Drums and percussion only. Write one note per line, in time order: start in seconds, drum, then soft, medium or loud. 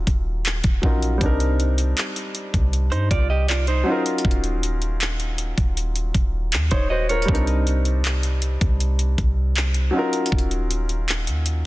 0.07 kick medium
0.07 closed hi-hat medium
0.45 clap loud
0.45 closed hi-hat medium
0.64 kick medium
0.64 closed hi-hat soft
0.83 kick medium
1.03 closed hi-hat medium
1.21 kick loud
1.21 closed hi-hat medium
1.40 closed hi-hat soft
1.60 closed hi-hat medium
1.78 closed hi-hat soft
1.97 clap medium
1.97 closed hi-hat medium
2.16 closed hi-hat soft
2.35 closed hi-hat medium
2.54 kick medium
2.54 closed hi-hat soft
2.73 closed hi-hat medium
2.92 closed hi-hat soft
3.11 kick medium
3.11 closed hi-hat medium
3.49 clap loud
3.49 closed hi-hat medium
3.67 closed hi-hat soft
4.06 closed hi-hat medium
4.18 closed hi-hat medium
4.25 kick loud
4.31 closed hi-hat medium
4.44 closed hi-hat soft
4.63 closed hi-hat medium
4.82 closed hi-hat soft
5.01 clap loud
5.01 closed hi-hat medium
5.20 closed hi-hat medium
5.38 closed hi-hat medium
5.58 kick medium
5.58 closed hi-hat soft
5.77 closed hi-hat medium
5.96 closed hi-hat medium
6.15 kick medium
6.15 closed hi-hat medium
6.52 clap loud
6.52 closed hi-hat medium
6.71 kick medium
6.71 closed hi-hat soft
7.09 closed hi-hat medium
7.22 closed hi-hat medium
7.28 kick loud
7.35 closed hi-hat medium
7.47 closed hi-hat soft
7.67 closed hi-hat medium
7.85 closed hi-hat soft
8.05 clap loud
8.05 closed hi-hat medium
8.23 closed hi-hat medium
8.42 closed hi-hat medium
8.61 kick medium
8.61 closed hi-hat soft
8.80 closed hi-hat medium
8.99 closed hi-hat medium
9.18 kick medium
9.18 closed hi-hat medium
9.56 clap loud
9.56 closed hi-hat medium
9.74 closed hi-hat soft
10.13 closed hi-hat medium
10.26 closed hi-hat medium
10.32 kick loud
10.38 closed hi-hat medium
10.51 closed hi-hat soft
10.71 closed hi-hat medium
10.89 closed hi-hat soft
11.08 clap loud
11.08 closed hi-hat medium
11.27 closed hi-hat medium
11.46 closed hi-hat medium